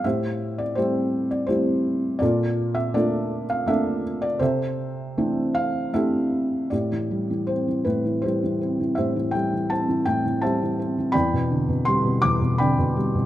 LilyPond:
<<
  \new Staff \with { instrumentName = "Felt piano" } { \time 3/4 \key c \major \tempo 4 = 82 << { e''8. d''16 c''8. d''16 c''4 | d''8. e''16 d''8. f''16 e''8. d''16 | c''4. f''8 e''4 | \key a \minor d''4 c''8 b'8 c''4 |
e''8 g''8 a''8 g''8 a''4 | b''4 c'''8 d'''8 b''4 | } \\ { <g' c''>4 <e' g'>4 <e' g'>4 | <f' a'>4 <f' a'>4 a'4 | <a' e''>2 <g' a'>4 | g'4. r8 <e' g'>4 |
<g' c''>4. r8 <c'' e''>4 | <d'' g''>4. r8 <d'' g''>4 | } >> }
  \new Staff \with { instrumentName = "Felt piano" } { \clef bass \time 3/4 \key c \major a,4 <g a c'>4 <g a c'>4 | bes,4 <a bes d'>4 <a bes d'>4 | c4 <e a c' d'>4 <a c' d' e'>4 | \key a \minor a,16 e16 g16 e16 c'16 e16 a,16 e16 g16 e16 c'16 e16 |
a,16 e16 g16 e16 c'16 e16 a,16 e16 g16 e16 c'16 e16 | e,16 b,16 d16 b,16 g16 b,16 e,16 b,16 d16 b,16 g16 b,16 | }
>>